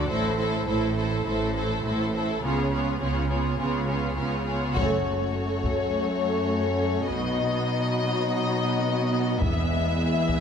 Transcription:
0.09 0.61 A1 soft
0.09 0.61 A2 soft
0.09 0.38 A3 soft
0.09 0.38 E4 soft
0.09 0.38 A4 soft
0.09 0.38 C5 soft
0.39 0.67 A3 soft
0.39 0.67 E4 soft
0.39 0.67 A4 soft
0.39 0.68 C5 soft
0.68 1.19 A1 soft
0.68 1.20 A2 soft
0.68 0.96 A3 soft
0.68 0.96 E4 soft
0.68 0.96 A4 soft
0.68 0.96 C5 soft
0.97 1.26 A3 soft
0.97 1.26 E4 soft
0.97 1.26 A4 soft
0.97 1.26 C5 soft
1.26 1.78 A1 soft
1.26 1.78 A2 soft
1.26 1.56 A3 soft
1.26 1.55 E4 soft
1.26 1.56 A4 soft
1.26 1.56 C5 soft
1.57 1.85 A3 soft
1.57 1.85 E4 soft
1.57 1.85 A4 soft
1.57 1.85 C5 soft
1.84 2.36 A1 soft
1.84 2.36 A2 soft
1.84 2.13 A3 soft
1.84 2.13 E4 soft
1.84 2.14 A4 soft
1.84 2.14 C5 soft
2.14 2.43 A3 soft
2.14 2.43 E4 soft
2.14 2.44 A4 soft
2.14 2.44 C5 soft
2.43 2.94 C#2 soft
2.43 2.94 C#3 soft
2.43 2.72 B3 soft
2.43 2.72 F4 soft
2.43 2.73 G#4 soft
2.43 2.73 C#5 soft
2.73 3.01 B3 soft
2.73 3.01 F4 soft
2.73 3.00 G#4 soft
2.73 3.01 C#5 soft
3.01 3.53 C#2 soft
3.01 3.53 C#3 soft
3.01 3.31 B3 soft
3.01 3.30 F4 soft
3.01 3.29 G#4 soft
3.01 3.29 C#5 soft
3.30 3.60 B3 soft
3.30 3.60 F4 soft
3.30 3.59 G#4 soft
3.30 3.59 C#5 soft
3.59 4.11 C#2 soft
3.59 4.11 C#3 soft
3.59 3.89 B3 soft
3.59 3.89 F4 soft
3.59 3.88 G#4 soft
3.59 3.87 C#5 soft
3.88 4.18 B3 soft
3.88 4.18 F4 soft
3.88 4.16 G#4 soft
3.88 4.16 C#5 soft
4.17 4.69 C#2 soft
4.17 4.69 C#3 soft
4.17 4.47 B3 soft
4.17 4.47 F4 soft
4.17 4.44 G#4 soft
4.17 4.44 C#5 soft
4.45 4.75 G#4 soft
4.45 4.75 C#5 soft
4.49 4.77 B3 soft
4.49 4.77 F4 soft
4.74 5.31 F#1 medium
4.74 7.05 F#2 soft
4.74 7.05 A3 soft
4.74 7.06 A3 medium
4.74 7.05 C#4 soft
4.74 9.37 F#4 soft
4.74 7.05 C#5 soft
4.74 taiko soft
5.64 taiko soft
7.08 7.63 B1 soft
7.08 9.38 B2 soft
7.08 9.39 F#3 soft
7.08 10.40 B3 soft
7.08 9.39 D#4 soft
7.08 9.38 D#5 soft
9.42 9.96 E1 soft
9.42 10.40 E2 soft
9.42 10.40 G#3 soft
9.42 10.40 E4 soft
9.42 10.40 G#4 soft
9.42 10.40 E5 soft
9.42 taiko soft
10.29 taiko soft

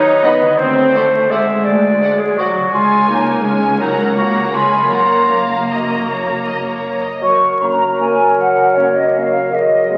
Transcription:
0.00 0.51 D#3 medium
0.00 0.22 D#4 medium
0.00 0.53 D#4 soft
0.00 0.48 F#4 soft
0.00 0.58 B4 soft
0.00 0.23 C#5 medium
0.23 0.59 B3 medium
0.23 0.59 D#5 medium
0.23 0.32 D#5 soft
0.23 0.32 F#5 soft
0.23 0.33 B5 soft
0.41 2.66 D3 soft
0.45 2.68 C4 soft
0.50 2.71 F#4 soft
0.54 0.87 D2 medium
0.54 0.88 D2 medium
0.54 1.32 C5 medium
0.54 2.73 D5 soft
0.59 0.94 C4 medium
0.94 1.32 A3 medium
0.94 1.03 C5 soft
0.94 1.03 D5 soft
0.94 1.03 F#5 soft
1.30 2.39 G#3 soft
1.30 1.40 C5 soft
1.30 1.40 D5 soft
1.30 1.66 E5 medium
1.30 1.40 F#5 soft
1.65 1.96 D2 medium
1.65 2.21 D5 medium
2.02 2.10 C5 soft
2.02 2.11 D5 soft
2.02 2.11 F#5 soft
2.20 2.40 G#4 medium
2.38 2.74 F#3 soft
2.38 2.75 F#4 medium
2.38 2.47 C5 soft
2.38 2.47 D5 soft
2.38 2.48 F#5 soft
2.56 3.62 C#3 soft
2.60 3.67 C#4 soft
2.65 3.78 G#4 soft
2.69 3.76 C#5 soft
2.73 4.88 C#2 medium
2.73 3.08 G#3 medium
2.73 3.08 F4 medium
2.73 3.42 C#5 soft
2.73 3.43 G#5 soft
3.09 3.46 A#3 soft
3.09 3.48 D#4 medium
3.46 3.82 G#3 soft
3.46 3.80 C#4 medium
3.46 3.81 C#5 soft
3.46 3.81 G#5 soft
3.64 4.35 C#3 soft
3.68 4.40 C#4 soft
3.72 4.52 A#4 soft
3.77 4.49 C#5 soft
3.81 4.17 F#3 soft
3.81 3.89 D#4 medium
3.81 4.17 C#5 soft
3.81 4.17 F#5 soft
3.81 4.16 A#5 soft
3.99 4.17 C#4 soft
4.17 4.55 A#3 soft
4.17 4.57 F#4 medium
4.17 4.54 C#5 soft
4.17 4.55 F#5 soft
4.17 4.54 A#5 soft
4.37 4.84 C#3 soft
4.41 4.77 C#4 soft
4.46 4.89 B4 soft
4.50 4.87 C#5 soft
4.55 4.92 G#3 soft
4.55 4.92 F4 medium
4.55 4.91 C#5 soft
4.55 4.92 G#5 soft
4.55 4.92 B5 soft
4.74 7.15 F#2 soft
4.79 7.59 C#4 soft
4.83 7.79 A#4 soft
4.88 7.99 C#5 soft
4.92 7.04 F#1 soft
4.92 7.04 F#2 soft
4.92 7.00 A#3 soft
4.92 5.42 F4 medium
4.92 5.26 C#5 soft
4.92 5.26 F#5 soft
4.92 5.70 A#5 soft
5.32 5.68 F5 medium
5.71 6.81 F#4 soft
5.71 6.08 D#5 soft
5.71 7.01 A#5 soft
6.09 6.46 C#5 soft
6.46 6.65 D#5 soft
6.66 7.03 C#5 soft
7.03 7.22 D#5 soft
7.21 8.36 F#2 soft
7.21 9.48 F#3 soft
7.21 9.47 A#4 soft
7.21 7.58 C#6 medium
7.41 8.54 C#3 soft
7.60 7.76 A#3 soft
7.60 8.73 C#4 soft
7.60 7.76 C#4 soft
7.60 8.00 A#5 medium
7.80 8.18 A#4 soft
7.99 8.13 A#3 soft
7.99 8.13 C#4 soft
7.99 9.13 C#5 soft
7.99 8.37 G#5 medium
8.19 8.93 A#4 soft
8.37 9.50 F#2 soft
8.37 8.75 F#5 medium
8.56 9.53 C#3 soft
8.74 8.91 A#3 soft
8.74 9.53 C#4 soft
8.74 8.90 C#4 soft
8.74 8.95 C#5 medium
8.94 9.32 A#4 soft
8.94 9.15 D#5 medium
9.14 9.29 A#3 soft
9.14 9.29 C#4 soft
9.14 9.53 C#5 soft
9.14 9.52 F5 medium
9.33 9.53 A#4 soft
9.51 9.98 F#2 soft
9.51 9.98 F#3 medium
9.51 9.98 G#4 soft
9.51 9.98 D#5 medium
9.70 9.98 F#3 soft
9.90 9.98 G#3 soft
9.90 9.98 B3 soft

